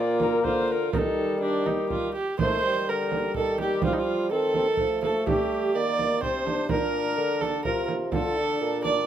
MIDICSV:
0, 0, Header, 1, 6, 480
1, 0, Start_track
1, 0, Tempo, 486224
1, 919, Time_signature, 3, 2, 24, 8
1, 2839, Tempo, 477327
1, 9063, End_track
2, 0, Start_track
2, 0, Title_t, "Recorder"
2, 0, Program_c, 0, 74
2, 0, Note_on_c, 0, 74, 91
2, 197, Note_off_c, 0, 74, 0
2, 205, Note_on_c, 0, 70, 95
2, 432, Note_on_c, 0, 72, 93
2, 447, Note_off_c, 0, 70, 0
2, 670, Note_off_c, 0, 72, 0
2, 670, Note_on_c, 0, 72, 81
2, 709, Note_on_c, 0, 70, 88
2, 718, Note_off_c, 0, 72, 0
2, 911, Note_off_c, 0, 70, 0
2, 917, Note_on_c, 0, 70, 93
2, 963, Note_on_c, 0, 69, 101
2, 973, Note_off_c, 0, 70, 0
2, 1404, Note_on_c, 0, 67, 76
2, 1418, Note_off_c, 0, 69, 0
2, 2124, Note_off_c, 0, 67, 0
2, 2368, Note_on_c, 0, 72, 80
2, 2808, Note_off_c, 0, 72, 0
2, 2858, Note_on_c, 0, 70, 57
2, 3321, Note_off_c, 0, 70, 0
2, 3341, Note_on_c, 0, 70, 60
2, 3381, Note_on_c, 0, 69, 65
2, 3391, Note_off_c, 0, 70, 0
2, 3567, Note_off_c, 0, 69, 0
2, 3580, Note_on_c, 0, 67, 65
2, 3807, Note_off_c, 0, 67, 0
2, 3819, Note_on_c, 0, 65, 68
2, 4276, Note_off_c, 0, 65, 0
2, 4283, Note_on_c, 0, 69, 71
2, 4991, Note_off_c, 0, 69, 0
2, 4999, Note_on_c, 0, 70, 65
2, 5040, Note_on_c, 0, 69, 71
2, 5050, Note_off_c, 0, 70, 0
2, 5240, Note_on_c, 0, 67, 64
2, 5255, Note_off_c, 0, 69, 0
2, 5717, Note_off_c, 0, 67, 0
2, 5723, Note_on_c, 0, 75, 67
2, 5762, Note_on_c, 0, 74, 73
2, 5772, Note_off_c, 0, 75, 0
2, 6196, Note_off_c, 0, 74, 0
2, 6204, Note_on_c, 0, 72, 75
2, 6676, Note_off_c, 0, 72, 0
2, 6684, Note_on_c, 0, 70, 80
2, 7389, Note_off_c, 0, 70, 0
2, 7409, Note_on_c, 0, 69, 70
2, 7628, Note_off_c, 0, 69, 0
2, 7634, Note_on_c, 0, 70, 72
2, 7873, Note_off_c, 0, 70, 0
2, 8117, Note_on_c, 0, 69, 76
2, 8798, Note_off_c, 0, 69, 0
2, 8832, Note_on_c, 0, 74, 77
2, 8892, Note_off_c, 0, 74, 0
2, 9063, End_track
3, 0, Start_track
3, 0, Title_t, "Viola"
3, 0, Program_c, 1, 41
3, 0, Note_on_c, 1, 65, 76
3, 429, Note_off_c, 1, 65, 0
3, 435, Note_on_c, 1, 65, 69
3, 917, Note_on_c, 1, 63, 64
3, 932, Note_off_c, 1, 65, 0
3, 1354, Note_off_c, 1, 63, 0
3, 1389, Note_on_c, 1, 62, 88
3, 1638, Note_on_c, 1, 63, 67
3, 1652, Note_off_c, 1, 62, 0
3, 1868, Note_off_c, 1, 63, 0
3, 1874, Note_on_c, 1, 65, 81
3, 2112, Note_off_c, 1, 65, 0
3, 2118, Note_on_c, 1, 67, 71
3, 2356, Note_off_c, 1, 67, 0
3, 2366, Note_on_c, 1, 72, 93
3, 2855, Note_on_c, 1, 70, 78
3, 2870, Note_off_c, 1, 72, 0
3, 3323, Note_off_c, 1, 70, 0
3, 3329, Note_on_c, 1, 69, 81
3, 3561, Note_off_c, 1, 69, 0
3, 3574, Note_on_c, 1, 67, 76
3, 3804, Note_off_c, 1, 67, 0
3, 3814, Note_on_c, 1, 65, 73
3, 3900, Note_on_c, 1, 63, 64
3, 3915, Note_off_c, 1, 65, 0
3, 3957, Note_on_c, 1, 65, 74
3, 3972, Note_off_c, 1, 63, 0
3, 4286, Note_off_c, 1, 65, 0
3, 4292, Note_on_c, 1, 69, 92
3, 4996, Note_off_c, 1, 69, 0
3, 5013, Note_on_c, 1, 69, 74
3, 5245, Note_off_c, 1, 69, 0
3, 5261, Note_on_c, 1, 67, 81
3, 5733, Note_on_c, 1, 74, 90
3, 5748, Note_off_c, 1, 67, 0
3, 6204, Note_off_c, 1, 74, 0
3, 6210, Note_on_c, 1, 72, 82
3, 6679, Note_off_c, 1, 72, 0
3, 6701, Note_on_c, 1, 70, 92
3, 7400, Note_on_c, 1, 69, 85
3, 7415, Note_off_c, 1, 70, 0
3, 7636, Note_off_c, 1, 69, 0
3, 7642, Note_on_c, 1, 70, 77
3, 7877, Note_off_c, 1, 70, 0
3, 8127, Note_on_c, 1, 69, 94
3, 8802, Note_off_c, 1, 69, 0
3, 8842, Note_on_c, 1, 74, 87
3, 9063, Note_off_c, 1, 74, 0
3, 9063, End_track
4, 0, Start_track
4, 0, Title_t, "Trombone"
4, 0, Program_c, 2, 57
4, 0, Note_on_c, 2, 58, 76
4, 756, Note_off_c, 2, 58, 0
4, 923, Note_on_c, 2, 55, 70
4, 2102, Note_off_c, 2, 55, 0
4, 2372, Note_on_c, 2, 57, 61
4, 2608, Note_on_c, 2, 55, 64
4, 2623, Note_off_c, 2, 57, 0
4, 4290, Note_on_c, 2, 60, 61
4, 4305, Note_off_c, 2, 55, 0
4, 4527, Note_off_c, 2, 60, 0
4, 4533, Note_on_c, 2, 60, 63
4, 4639, Note_off_c, 2, 60, 0
4, 4768, Note_on_c, 2, 57, 59
4, 5736, Note_on_c, 2, 58, 56
4, 5751, Note_off_c, 2, 57, 0
4, 6196, Note_on_c, 2, 60, 61
4, 6211, Note_off_c, 2, 58, 0
4, 6443, Note_on_c, 2, 62, 68
4, 6458, Note_off_c, 2, 60, 0
4, 6678, Note_off_c, 2, 62, 0
4, 6684, Note_on_c, 2, 62, 61
4, 7647, Note_on_c, 2, 65, 60
4, 7662, Note_off_c, 2, 62, 0
4, 8108, Note_off_c, 2, 65, 0
4, 8114, Note_on_c, 2, 65, 65
4, 8364, Note_on_c, 2, 62, 60
4, 8379, Note_off_c, 2, 65, 0
4, 9063, Note_off_c, 2, 62, 0
4, 9063, End_track
5, 0, Start_track
5, 0, Title_t, "Bassoon"
5, 0, Program_c, 3, 70
5, 0, Note_on_c, 3, 46, 85
5, 438, Note_on_c, 3, 50, 70
5, 453, Note_off_c, 3, 46, 0
5, 912, Note_off_c, 3, 50, 0
5, 918, Note_on_c, 3, 51, 72
5, 2100, Note_off_c, 3, 51, 0
5, 2371, Note_on_c, 3, 51, 65
5, 2849, Note_on_c, 3, 50, 59
5, 2864, Note_off_c, 3, 51, 0
5, 3324, Note_off_c, 3, 50, 0
5, 3330, Note_on_c, 3, 51, 57
5, 3798, Note_off_c, 3, 51, 0
5, 3814, Note_on_c, 3, 53, 68
5, 4280, Note_off_c, 3, 53, 0
5, 4289, Note_on_c, 3, 51, 59
5, 4763, Note_on_c, 3, 53, 57
5, 4778, Note_off_c, 3, 51, 0
5, 5250, Note_on_c, 3, 55, 65
5, 5265, Note_off_c, 3, 53, 0
5, 5720, Note_off_c, 3, 55, 0
5, 5726, Note_on_c, 3, 51, 62
5, 6197, Note_off_c, 3, 51, 0
5, 6212, Note_on_c, 3, 48, 58
5, 6680, Note_off_c, 3, 48, 0
5, 6690, Note_on_c, 3, 46, 68
5, 7158, Note_off_c, 3, 46, 0
5, 7163, Note_on_c, 3, 50, 63
5, 7645, Note_on_c, 3, 48, 63
5, 7660, Note_off_c, 3, 50, 0
5, 8116, Note_off_c, 3, 48, 0
5, 8122, Note_on_c, 3, 50, 73
5, 8591, Note_off_c, 3, 50, 0
5, 8602, Note_on_c, 3, 46, 68
5, 9063, Note_off_c, 3, 46, 0
5, 9063, End_track
6, 0, Start_track
6, 0, Title_t, "Frame drum"
6, 195, Note_on_c, 9, 64, 53
6, 294, Note_off_c, 9, 64, 0
6, 438, Note_on_c, 9, 64, 51
6, 537, Note_off_c, 9, 64, 0
6, 920, Note_on_c, 9, 64, 83
6, 1019, Note_off_c, 9, 64, 0
6, 1641, Note_on_c, 9, 64, 54
6, 1740, Note_off_c, 9, 64, 0
6, 1877, Note_on_c, 9, 64, 51
6, 1976, Note_off_c, 9, 64, 0
6, 2359, Note_on_c, 9, 64, 74
6, 2457, Note_off_c, 9, 64, 0
6, 3081, Note_on_c, 9, 64, 48
6, 3181, Note_off_c, 9, 64, 0
6, 3310, Note_on_c, 9, 64, 47
6, 3411, Note_off_c, 9, 64, 0
6, 3553, Note_on_c, 9, 64, 48
6, 3654, Note_off_c, 9, 64, 0
6, 3785, Note_on_c, 9, 64, 75
6, 3886, Note_off_c, 9, 64, 0
6, 4512, Note_on_c, 9, 64, 50
6, 4612, Note_off_c, 9, 64, 0
6, 4745, Note_on_c, 9, 64, 49
6, 4846, Note_off_c, 9, 64, 0
6, 5003, Note_on_c, 9, 64, 48
6, 5104, Note_off_c, 9, 64, 0
6, 5247, Note_on_c, 9, 64, 74
6, 5348, Note_off_c, 9, 64, 0
6, 5972, Note_on_c, 9, 64, 47
6, 6072, Note_off_c, 9, 64, 0
6, 6207, Note_on_c, 9, 64, 49
6, 6307, Note_off_c, 9, 64, 0
6, 6451, Note_on_c, 9, 64, 48
6, 6552, Note_off_c, 9, 64, 0
6, 6677, Note_on_c, 9, 64, 72
6, 6778, Note_off_c, 9, 64, 0
6, 7400, Note_on_c, 9, 64, 49
6, 7500, Note_off_c, 9, 64, 0
6, 7640, Note_on_c, 9, 64, 51
6, 7740, Note_off_c, 9, 64, 0
6, 7876, Note_on_c, 9, 64, 46
6, 7977, Note_off_c, 9, 64, 0
6, 8111, Note_on_c, 9, 64, 74
6, 8212, Note_off_c, 9, 64, 0
6, 8841, Note_on_c, 9, 64, 49
6, 8942, Note_off_c, 9, 64, 0
6, 9063, End_track
0, 0, End_of_file